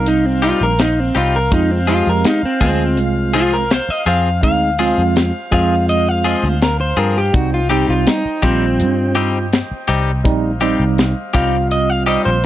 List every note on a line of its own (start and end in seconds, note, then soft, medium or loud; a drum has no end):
0.00 0.51 C2 medium
0.00 0.71 G3 medium
0.00 0.71 C4 medium
0.00 0.71 D#4 medium
0.00 1.48 C5 medium
0.00 7.30 F5 medium
0.06 0.26 D#4 medium
0.06 closed hi-hat medium
0.26 0.43 C4 medium
0.42 0.65 G3 medium
0.42 0.65 C4 medium
0.42 0.65 D#4 medium
0.42 0.61 F4 medium
0.42 0.64 G4 medium
0.42 closed hi-hat medium
0.61 1.10 A#1 medium
0.61 0.79 A#4 medium
0.79 1.00 D#4 medium
0.79 snare loud
0.79 closed hi-hat medium
1.00 1.16 C4 medium
1.15 1.48 C2 medium
1.15 1.38 G3 soft
1.15 1.38 C4 medium
1.15 1.38 D#4 medium
1.15 1.34 F4 medium
1.15 1.37 G4 medium
1.15 closed hi-hat medium
1.36 1.52 A#4 medium
1.51 2.01 F2 medium
1.51 1.77 G#3 medium
1.51 1.77 C4 medium
1.51 1.71 D#4 medium
1.51 1.78 F4 medium
1.51 12.46 C5 medium
1.51 kick loud
1.51 closed hi-hat medium
1.71 1.88 C4 medium
1.87 2.11 F3 medium
1.87 2.39 G#3 medium
1.87 2.39 C4 medium
1.87 2.10 C4 medium
1.87 2.10 F4 medium
1.87 2.07 F4 loud
1.87 2.39 G4 medium
1.87 2.10 G#4 medium
1.87 closed hi-hat medium
2.07 2.23 F2 medium
2.07 2.25 A#4 medium
2.24 2.43 D#4 medium
2.24 snare loud
2.24 closed hi-hat medium
2.43 2.62 C4 medium
2.43 muted picked electric bass stroke soft
2.61 2.97 D2 medium
2.61 2.84 F3 medium
2.61 3.63 G#3 medium
2.61 3.63 C4 medium
2.61 2.84 C4 medium
2.61 2.97 C4 medium
2.61 2.83 F4 medium
2.61 3.63 F4 medium
2.61 2.83 G#4 medium
2.61 kick medium
2.61 closed hi-hat medium
2.97 3.79 C2 loud
2.97 closed hi-hat medium
3.34 3.57 F3 medium
3.34 3.56 C4 medium
3.34 3.56 F4 medium
3.34 3.53 F4 loud
3.34 3.56 G#4 medium
3.34 closed hi-hat medium
3.53 3.72 A#4 medium
3.71 3.90 C5 medium
3.71 snare loud
3.71 closed hi-hat medium
3.89 4.07 D#5 medium
3.89 muted picked electric bass stroke soft
4.06 4.43 F2 medium
4.06 4.29 F3 medium
4.06 4.29 C4 medium
4.06 4.29 F4 medium
4.06 4.28 G#4 medium
4.06 4.43 F5 medium
4.06 closed hi-hat medium
4.43 4.92 D2 medium
4.43 4.68 G#3 medium
4.43 4.69 C4 medium
4.43 4.69 D#4 medium
4.43 5.14 F5 loud
4.43 kick loud
4.43 closed hi-hat medium
4.79 5.02 F3 medium
4.79 5.30 G#3 medium
4.79 5.31 C4 medium
4.79 5.02 C4 medium
4.79 5.02 F4 medium
4.79 5.31 F4 medium
4.79 5.01 G#4 medium
4.79 closed hi-hat medium
4.98 5.31 F2 medium
5.16 snare loud
5.16 closed hi-hat medium
5.51 6.34 F2 medium
5.51 5.75 F3 medium
5.51 6.53 G#3 medium
5.51 6.54 C4 medium
5.51 5.75 C4 medium
5.51 6.54 F4 medium
5.51 5.74 F4 medium
5.51 5.74 G#4 medium
5.51 5.88 F5 loud
5.51 kick medium
5.51 closed hi-hat medium
5.89 6.09 D#5 medium
5.89 closed hi-hat medium
6.09 6.27 F5 medium
6.24 6.48 F3 medium
6.24 6.47 C4 medium
6.24 6.47 F4 medium
6.24 6.47 G#4 medium
6.24 6.45 D#5 medium
6.24 closed hi-hat medium
6.44 6.92 D2 medium
6.44 6.61 C5 medium
6.62 6.80 A#4 medium
6.62 snare loud
6.62 closed hi-hat medium
6.81 6.99 C5 medium
6.97 7.30 G2 medium
6.97 7.20 F3 medium
6.97 7.20 C4 medium
6.97 7.20 F4 medium
6.97 7.19 G#4 medium
6.97 7.16 A#4 medium
6.97 closed hi-hat medium
7.18 7.34 G4 medium
7.33 7.83 C2 loud
7.33 7.59 G3 medium
7.33 7.59 C4 medium
7.33 7.60 D#4 medium
7.33 7.52 F#4 medium
7.33 12.46 D#5 medium
7.33 10.22 G5 medium
7.33 kick loud
7.33 closed hi-hat medium
7.54 7.71 F4 medium
7.70 8.21 G3 medium
7.70 7.93 G3 medium
7.70 7.93 C4 medium
7.70 8.22 C4 medium
7.70 7.92 D#4 medium
7.70 8.22 D#4 medium
7.70 7.92 G4 medium
7.70 7.89 G4 medium
7.70 closed hi-hat medium
7.89 8.05 C2 medium
7.89 8.08 F4 loud
8.07 8.42 D#4 medium
8.07 snare loud
8.07 closed hi-hat medium
8.25 muted picked electric bass stroke soft
8.42 8.81 A#1 medium
8.42 9.45 G3 medium
8.42 8.66 G3 medium
8.42 9.45 C4 medium
8.42 8.65 C4 medium
8.42 9.14 C4 loud
8.42 8.65 D#4 medium
8.42 9.45 F4 medium
8.42 8.65 G4 medium
8.42 kick medium
8.42 closed hi-hat medium
8.80 9.61 G2 loud
8.80 closed hi-hat medium
9.15 9.38 G3 medium
9.15 9.38 C4 medium
9.15 9.38 D#4 medium
9.15 9.38 G4 medium
9.15 closed hi-hat medium
9.53 snare loud
9.53 closed hi-hat medium
9.71 muted picked electric bass stroke soft
9.88 10.25 C2 medium
9.88 10.11 G3 medium
9.88 10.11 C4 medium
9.88 10.11 D#4 medium
9.88 10.10 G4 medium
9.88 closed hi-hat medium
10.23 10.74 A#1 loud
10.23 10.50 G3 medium
10.23 10.50 C4 medium
10.23 10.51 D#4 loud
10.23 12.46 F5 medium
10.23 kick loud
10.23 closed hi-hat medium
10.61 11.12 G3 medium
10.61 10.84 G3 medium
10.61 11.13 C4 medium
10.61 10.84 C4 medium
10.61 10.84 D#4 medium
10.61 11.13 D#4 medium
10.61 10.83 G4 medium
10.61 closed hi-hat medium
10.80 11.12 C2 medium
10.98 snare loud
10.98 closed hi-hat medium
11.34 12.16 C2 medium
11.34 12.36 G3 medium
11.34 11.57 G3 medium
11.34 12.36 C4 medium
11.34 11.57 C4 medium
11.34 11.56 D#4 medium
11.34 12.36 F4 medium
11.34 11.56 G4 medium
11.34 11.70 F5 medium
11.34 kick medium
11.34 closed hi-hat medium
11.71 11.90 D#5 loud
11.71 closed hi-hat medium
11.90 12.06 F5 medium
12.06 12.30 G3 medium
12.06 12.29 C4 medium
12.06 12.29 D#4 medium
12.06 12.29 G4 medium
12.06 12.25 D#5 medium
12.06 closed hi-hat medium
12.25 12.46 A#1 medium
12.25 12.44 C5 medium